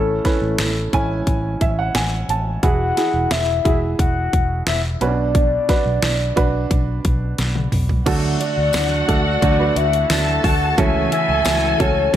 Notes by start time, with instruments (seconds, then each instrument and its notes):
Already playing: fingered electric bass A1, upright piano A2 C#4 E4 A4, soft synth lead A4
0.25 upright piano C#4 E4 B4, kick, snare, closed hi-hat
0.42 fingered electric bass A1
0.58 fingered electric bass A1, snare, closed hi-hat
0.93 fingered electric bass A1, upright piano C#4 E4 G#5, kick, closed hi-hat
1.27 fingered electric bass A1, kick, closed hi-hat
1.61 fingered electric bass A1, upright piano E5, kick, closed hi-hat
1.79 upright piano F#5
1.95 fingered electric bass A1, upright piano G#5, snare, closed hi-hat
2.29 fingered electric bass A1, upright piano A5, closed hi-hat
2.63 fingered electric bass E1, upright piano E3 E4 F#4 G#4, soft synth lead F#5, kick, closed hi-hat
2.97 upright piano E4 F#4 G#4, snare, closed hi-hat
3.14 fingered electric bass E1
3.31 fingered electric bass E1, soft synth lead E5, snare, closed hi-hat
3.65 fingered electric bass E1, upright piano E4 F#4 G#4, soft synth lead E5, kick, closed hi-hat
3.99 fingered electric bass E1, soft synth lead F#5, kick, closed hi-hat
4.33 fingered electric bass E1, kick, closed hi-hat
4.67 fingered electric bass E1, soft synth lead E5, snare, closed hi-hat
5.01 fingered electric bass B1, upright piano B2 C#4 F#4 B4, soft synth lead D5, closed hi-hat
5.07 upright piano D4
5.35 kick, closed hi-hat
5.69 upright piano D4 F#4 B4, kick, snare, closed hi-hat
5.86 fingered electric bass B1
6.03 fingered electric bass B1, snare, closed hi-hat
6.36 fingered electric bass B1, upright piano D4 F#4 B4, kick, closed hi-hat
6.71 fingered electric bass B1, kick, closed hi-hat
7.05 fingered electric bass B1, kick, closed hi-hat
7.38 fingered electric bass B1, snare, closed hi-hat
7.56 high tom
7.72 fingered electric bass B1, mid tom, open hi-hat
7.89 floor tom
8.06 fingered electric bass D2, steel-string acoustic guitar D3 F#3 A3 D4 F#4, upright piano D3 D4 F#4 A4, violin section F#4 F#5, kick, closed hi-hat, crash
8.40 steel-string acoustic guitar A3 D4 F#4, soft synth lead D5, closed hi-hat
8.57 fingered electric bass D2
8.73 fingered electric bass D2, steel-string acoustic guitar F#3 A3 D4 F#4, snare, closed hi-hat, tambourine
9.08 fingered electric bass D2, steel-string acoustic guitar A3 D4 F#4, upright piano D4 F#4 A4, soft synth lead D5, kick, closed hi-hat
9.42 fingered electric bass D2, steel-string acoustic guitar D3 F#3 A3 D4 F#4, kick, closed hi-hat
9.59 upright piano D4 F#4 B4
9.76 fingered electric bass D2, steel-string acoustic guitar A3 D4 F#4, soft synth lead E5, closed hi-hat
9.93 closed hi-hat
10.10 fingered electric bass D2, steel-string acoustic guitar F#3 A3 D4 F#4, violin section A4 A5, snare, closed hi-hat, tambourine
10.44 fingered electric bass D2, steel-string acoustic guitar A3 D4 F#4, soft synth lead F#5, kick, open hi-hat
10.77 fingered electric bass C#2, steel-string acoustic guitar C#3 E3 A3 C#4 F#4, upright piano C#3 C#4 F#4 A4, violin section A4 G#5, soft synth lead E5, kick, closed hi-hat
11.12 steel-string acoustic guitar A3 C#4 F#4, soft synth lead E5, closed hi-hat
11.29 fingered electric bass C#2
11.45 fingered electric bass C#2, steel-string acoustic guitar E3 A3 C#4 F#4, snare, closed hi-hat, tambourine
11.79 fingered electric bass C#2, steel-string acoustic guitar A3 C#4 F#4, upright piano C#4 F#4 A4, soft synth lead C#5, kick, closed hi-hat
12.13 steel-string acoustic guitar C#3 E3